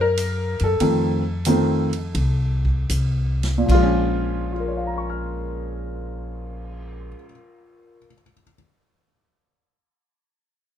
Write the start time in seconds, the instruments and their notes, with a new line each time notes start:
Already playing: upright bass F#2
0.01 grand piano A#4
0.17 hi-hat pedal, ride
0.60 upright bass F#2, ride
0.64 grand piano A4
0.80 upright bass F2, grand piano D#3 F3 A3 C4, ride
1.45 grand piano D#3 F3 A3 C4, hi-hat pedal, ride
1.93 ride
2.15 upright bass C2, ride
2.65 kick
2.90 upright bass C2, hi-hat pedal, ride
3.43 snare, ride
3.58 grand piano A#2
3.66 upright bass A#1, grand piano F3, kick, crash
3.71 grand piano G#3 F4
3.83 grand piano C#4
4.26 cymbal swell
4.53 grand piano F4
4.60 grand piano A#4
4.68 grand piano C#5
4.77 grand piano F5
4.87 grand piano A#5
4.98 grand piano C#6
5.10 grand piano F6